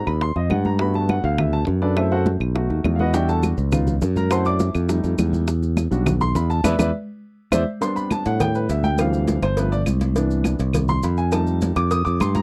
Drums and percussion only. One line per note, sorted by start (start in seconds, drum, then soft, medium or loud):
0.07 high conga soft
0.07 claves medium
0.21 high bongo medium
0.21 high conga soft
0.36 high bongo soft
0.36 high conga soft
0.50 high bongo soft
0.50 low bongo medium
0.50 high conga medium
0.50 claves medium
0.65 high bongo soft
0.65 high conga medium
0.79 high bongo medium
0.79 high conga soft
0.94 high bongo soft
0.94 high conga soft
1.09 high bongo medium
1.09 high conga medium
1.09 claves medium
1.24 high conga soft
1.38 high bongo medium
1.38 high conga soft
1.38 low conga medium
1.38 claves medium
1.53 high bongo soft
1.53 high conga soft
1.67 high bongo soft
1.67 low bongo medium
1.67 high conga soft
1.82 high bongo soft
1.97 high bongo medium
1.97 high conga soft
1.97 claves medium
2.11 high bongo soft
2.11 high conga soft
2.26 high bongo medium
2.26 high conga medium
2.41 high conga soft
2.41 claves medium
2.55 high bongo medium
2.55 high conga soft
2.70 high bongo soft
2.70 high conga soft
2.84 high bongo soft
2.84 low bongo medium
2.84 high conga medium
2.84 claves medium
2.99 high bongo soft
2.99 high conga medium
3.14 high bongo medium
3.14 high conga soft
3.14 maracas medium
3.29 high bongo soft
3.29 high conga soft
3.29 maracas soft
3.43 high bongo medium
3.43 high conga medium
3.43 claves medium
3.43 maracas medium
3.58 high conga soft
3.58 maracas soft
3.72 high bongo medium
3.72 high conga soft
3.72 low conga medium
3.72 claves medium
3.72 maracas medium
3.87 high bongo soft
3.87 high conga soft
3.87 low conga medium
3.87 maracas soft
4.01 high bongo soft
4.01 low bongo medium
4.01 high conga soft
4.01 maracas medium
4.16 high bongo soft
4.16 high conga medium
4.16 maracas soft
4.31 high bongo medium
4.31 high conga soft
4.31 claves medium
4.31 maracas medium
4.45 high bongo soft
4.45 high conga soft
4.45 maracas soft
4.60 high bongo medium
4.60 high conga medium
4.60 maracas medium
4.75 high conga soft
4.75 claves medium
4.75 maracas soft
4.89 high bongo medium
4.89 high conga soft
4.89 maracas medium
5.04 high bongo soft
5.04 high conga soft
5.04 maracas soft
5.18 high bongo soft
5.18 low bongo medium
5.18 high conga medium
5.18 claves medium
5.18 maracas medium
5.33 high bongo soft
5.33 high conga medium
5.33 maracas soft
5.48 high bongo medium
5.48 maracas medium
5.62 high bongo soft
5.62 high conga soft
5.62 maracas soft
5.77 high bongo medium
5.77 high conga medium
5.77 claves medium
5.77 maracas medium
5.91 high conga soft
5.91 maracas soft
6.06 high bongo medium
6.06 high conga soft
6.06 low conga medium
6.06 claves medium
6.06 maracas medium
6.21 high bongo soft
6.21 high conga soft
6.21 low conga medium
6.21 maracas soft
6.35 high bongo soft
6.35 low bongo medium
6.35 high conga soft
6.35 maracas medium
6.50 high bongo soft
6.50 maracas soft
6.64 low bongo loud
6.64 high conga loud
6.64 claves loud
6.64 maracas loud
6.79 low bongo loud
6.79 high conga loud
6.79 claves loud
6.79 maracas loud
7.52 low bongo loud
7.52 high conga loud
7.52 claves loud
7.52 maracas loud
7.82 cowbell loud
7.82 high conga soft
7.82 maracas medium
7.96 high conga soft
7.96 maracas soft
8.11 cowbell medium
8.11 high conga medium
8.11 claves medium
8.11 maracas medium
8.26 cowbell medium
8.26 high conga soft
8.26 maracas soft
8.40 cowbell loud
8.40 high conga soft
8.40 low conga medium
8.40 claves medium
8.40 maracas medium
8.54 high conga soft
8.54 maracas soft
8.69 cowbell medium
8.69 high conga soft
8.69 maracas medium
8.83 high conga medium
8.83 maracas soft
8.98 cowbell loud
8.98 high conga soft
8.98 claves medium
8.98 maracas medium
9.13 high conga soft
9.13 maracas soft
9.27 cowbell medium
9.27 high conga loud
9.27 maracas medium
9.42 cowbell medium
9.42 high conga soft
9.42 claves medium
9.42 maracas soft
9.57 cowbell loud
9.57 high conga soft
9.57 maracas medium
9.72 high conga soft
9.72 maracas soft
9.86 cowbell medium
9.86 high conga medium
9.86 claves medium
9.86 maracas medium
10.01 cowbell medium
10.01 high conga medium
10.01 maracas soft
10.15 cowbell loud
10.15 high conga soft
10.15 maracas medium
10.30 high conga soft
10.30 maracas soft
10.44 cowbell medium
10.44 high conga loud
10.44 claves medium
10.44 maracas medium
10.59 cowbell medium
10.59 high conga soft
10.59 maracas soft
10.73 cowbell loud
10.73 high conga soft
10.73 low conga medium
10.73 claves medium
10.73 maracas medium
10.88 high conga soft
10.88 low conga medium
10.88 maracas soft
11.03 cowbell medium
11.03 high conga soft
11.03 maracas medium
11.17 maracas soft
11.32 cowbell loud
11.32 high conga soft
11.32 claves medium
11.32 maracas medium
11.47 high conga soft
11.47 maracas soft
11.61 cowbell medium
11.61 high conga medium
11.61 maracas medium
11.76 cowbell medium
11.76 high conga soft
11.76 claves medium
11.76 maracas soft
11.91 cowbell loud
11.91 high conga soft
11.91 maracas medium
12.06 high conga soft
12.06 maracas soft
12.20 cowbell medium
12.20 high conga medium
12.20 claves medium
12.20 maracas medium
12.35 cowbell medium
12.35 high conga medium
12.35 maracas soft